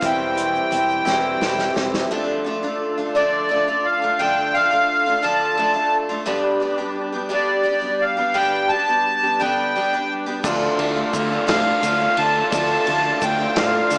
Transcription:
Already playing: tonewheel organ E3 C4 G4 C5
0.01 fingered electric bass E1, twelve-string acoustic guitar E3 C4 E4 G4, clean electric guitar G3, accordion G5, kick, closed hi-hat, shaker
0.35 twelve-string acoustic guitar C4 E4 G4, closed hi-hat, shaker
0.55 shaker
0.71 fingered electric bass E1, twelve-string acoustic guitar E3 C4 E4 G4, closed hi-hat
0.90 shaker
1.05 fingered electric bass E1, twelve-string acoustic guitar E3 C4 E4 G4, clean electric guitar G3, snare, shaker
1.41 fingered electric bass E1, twelve-string acoustic guitar E3 C4 E4 G4, snare
1.59 snare, shaker
1.74 fingered electric bass E1, twelve-string acoustic guitar C4 E4 G4, snare
1.94 snare
2.11 twelve-string acoustic guitar D3 F3 A3 D4 F4, tonewheel organ D4 F4 A4 D5
2.44 twelve-string acoustic guitar F3 A3 D4 F4
2.63 twelve-string acoustic guitar A3 D4 F4
2.98 twelve-string acoustic guitar A3 D4 F4
3.15 twelve-string acoustic guitar D3 F3 A3 D4 F4, accordion D5
3.49 twelve-string acoustic guitar F3 A3 D4 F4
3.68 twelve-string acoustic guitar A3 D4 F4
3.85 accordion F5
4.02 twelve-string acoustic guitar A3 D4 F4
4.19 twelve-string acoustic guitar D3 F3 A3 D4 F4, accordion G5
4.53 twelve-string acoustic guitar F3 A3 D4 F4, accordion F5
4.71 twelve-string acoustic guitar A3 D4 F4
5.06 twelve-string acoustic guitar A3 D4 F4
5.22 twelve-string acoustic guitar D3 F3 A3 D4 F4, accordion A5
5.57 twelve-string acoustic guitar F3 A3 D4 F4
5.74 twelve-string acoustic guitar A3 D4 F4
6.09 twelve-string acoustic guitar A3 D4 F4
6.26 twelve-string acoustic guitar G2 D3 G3 B3 D4 G4, tonewheel organ D4 G4 B4 D5
6.60 twelve-string acoustic guitar G3 B3 D4 G4
6.78 twelve-string acoustic guitar G3 B3 D4 G4
7.12 twelve-string acoustic guitar G3 B3 D4 G4
7.29 twelve-string acoustic guitar G2 D3 G3 B3 D4 G4
7.34 accordion D5
7.63 twelve-string acoustic guitar G3 B3 D4 G4
7.81 twelve-string acoustic guitar G3 B3 D4 G4
8.02 accordion F5
8.17 twelve-string acoustic guitar G3 B3 D4 G4
8.34 twelve-string acoustic guitar G2 D3 G3 B3 D4 G4, accordion G5
8.69 twelve-string acoustic guitar G3 B3 D4 G4, accordion A5
8.88 twelve-string acoustic guitar G3 B3 D4 G4
9.23 twelve-string acoustic guitar G3 B3 D4 G4
9.40 twelve-string acoustic guitar G2 D3 G3 B3 D4 G4, accordion G5
9.75 twelve-string acoustic guitar G3 B3 D4 G4
9.93 twelve-string acoustic guitar G3 B3 D4 G4
10.26 twelve-string acoustic guitar G3 B3 D4 G4
10.44 fingered electric bass D2, twelve-string acoustic guitar D3 F3 A3 D4 F4, grand piano D4 F4 A4 D5, tonewheel organ D4 F4 A4 D5, kick, crash, shaker
10.78 fingered electric bass D2, twelve-string acoustic guitar F3 A3 D4 F4, ride
10.96 twelve-string acoustic guitar A3 D4 F4
11.13 fingered electric bass D2, clean electric guitar D3 A3 D4 F4, kick, ride, shaker
11.31 twelve-string acoustic guitar A3 D4 F4
11.47 fingered electric bass A2, twelve-string acoustic guitar D3 F3 A3 D4 F4, grand piano D4 F4 A4 D5, accordion F5, snare, ride
11.82 fingered electric bass D2, clean electric guitar D3, twelve-string acoustic guitar F3 A3 D4, ride, shaker
11.86 twelve-string acoustic guitar F4
12.00 twelve-string acoustic guitar A3 D4 F4
12.16 fingered electric bass D2, clean electric guitar A3 D4 F4, accordion A5, ride, shaker
12.34 twelve-string acoustic guitar A3 D4 F4
12.51 fingered electric bass D2, twelve-string acoustic guitar D3 F3 A3 D4 F4, grand piano D4 F4 A4 D5, accordion A5, kick, ride, shaker
12.87 fingered electric bass D2, twelve-string acoustic guitar F3 A3 D4 F4, ride
13.04 twelve-string acoustic guitar A3 D4 F4
13.21 fingered electric bass D2, clean electric guitar D3 A3 D4 F4, accordion G5, kick, ride, shaker
13.39 twelve-string acoustic guitar A3 D4 F4
13.56 fingered electric bass A2, twelve-string acoustic guitar D3 F3 A3 D4 F4, grand piano D4 F4 A4 D5, accordion F5, snare, ride
13.90 fingered electric bass D2, clean electric guitar D3, twelve-string acoustic guitar F3 A3 D4 F4, ride, shaker

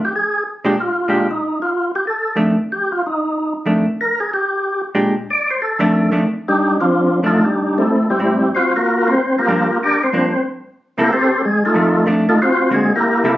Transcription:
0.05 tonewheel organ G4
0.16 tonewheel organ G#4
0.64 hollow-body jazz guitar A#2 G#3 D4 G4
0.80 tonewheel organ F4
1.08 hollow-body jazz guitar A#2 G#3 D4 G4
1.31 tonewheel organ D#4
1.62 tonewheel organ F4
1.95 tonewheel organ G4
2.07 tonewheel organ A4
2.36 hollow-body jazz guitar F2 D#3 A3 D4
2.72 tonewheel organ G4
2.92 tonewheel organ F4
3.06 tonewheel organ D#4
3.66 hollow-body jazz guitar F2 D#3 A3 D4
4.01 tonewheel organ A#4
4.20 tonewheel organ G#4
4.33 tonewheel organ G4
4.95 hollow-body jazz guitar A#2 G#3 D4 G4
5.30 tonewheel organ D5
5.50 tonewheel organ C5
5.62 tonewheel organ A4
5.79 hollow-body jazz guitar F2 D#3 A3 D4
6.12 hollow-body jazz guitar F2 D#3 A3 D4
6.48 tonewheel organ G3 D4 D#4 G4
6.80 tonewheel organ F3 C4 D4 F4
7.23 hollow-body jazz guitar F2 D#3 A3 D4, tonewheel organ F4 A4
7.27 tonewheel organ A3 D#4
7.45 tonewheel organ G3 D4 D#4 G4
7.78 tonewheel organ A3 C4 E4 A4
8.10 tonewheel organ G3 C4 E4 G4
8.19 hollow-body jazz guitar A2 G3 C4 E4
8.55 tonewheel organ C4 F4 F#4 C5
8.76 tonewheel organ A#3 F4 F#4 A#4
9.07 tonewheel organ C4 C5
9.38 tonewheel organ A#3 F4 G4 A#4
9.47 hollow-body jazz guitar G2 F3 A#3 D4
9.83 tonewheel organ D4 G4 A#4 D5
10.03 tonewheel organ C4 C5
10.12 hollow-body jazz guitar G2 F3 A#3 D4
10.98 hollow-body jazz guitar C3 A#3 E4 A4, tonewheel organ A#3 E4 G4 A#4
11.13 tonewheel organ C4 G4 A4 C5
11.45 tonewheel organ G#3 G#4
11.65 tonewheel organ A3 D#4 F4 A4
11.74 hollow-body jazz guitar F2 D#3 A3
12.06 hollow-body jazz guitar F2 D#3 A3 D4
12.29 tonewheel organ A3 D#4 F4 A4
12.42 tonewheel organ C4 F4 F#4 C5
12.70 hollow-body jazz guitar D3 A#3 C4 F#4, tonewheel organ G#4
12.74 tonewheel organ G#3
12.95 tonewheel organ A#3 E4 G4 A#4
13.24 hollow-body jazz guitar C3 A#3 E4 A4

